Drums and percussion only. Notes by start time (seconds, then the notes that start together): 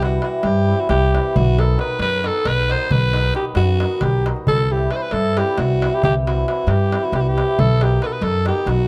0.02 darbuka tek
0.13 darbuka tek
0.22 darbuka tek
0.43 darbuka tek
0.79 darbuka tek
0.89 darbuka tek
1.02 darbuka tek
1.15 darbuka tek
1.36 darbuka dum
1.59 darbuka tek
1.69 darbuka tek
1.79 darbuka tek
2.00 darbuka tek
2.24 darbuka tek
2.45 darbuka tek
2.58 darbuka tek
2.69 darbuka tek
2.91 darbuka dum
3.02 darbuka tek
3.13 darbuka tek
3.24 darbuka tek
3.35 darbuka tek
3.45 darbuka tek
3.55 darbuka tek
3.68 darbuka tek
3.80 darbuka tek
3.91 darbuka tek
4.01 darbuka tek, darbuka dum
4.26 darbuka tek
4.36 darbuka tek
4.47 darbuka dum
4.81 darbuka tek
4.91 darbuka tek
5.11 darbuka tek
5.37 darbuka tek
5.47 darbuka tek
5.58 darbuka tek
5.71 darbuka tek
5.82 darbuka tek
6.03 darbuka dum
6.27 darbuka tek
6.37 darbuka tek
6.48 darbuka tek
6.68 darbuka tek
6.92 darbuka tek
7.03 darbuka tek
7.13 darbuka tek
7.26 darbuka tek
7.38 darbuka tek
7.59 darbuka dum
7.81 darbuka tek
7.92 darbuka tek
8.02 darbuka tek
8.22 darbuka tek
8.46 darbuka tek
8.57 darbuka tek
8.67 darbuka tek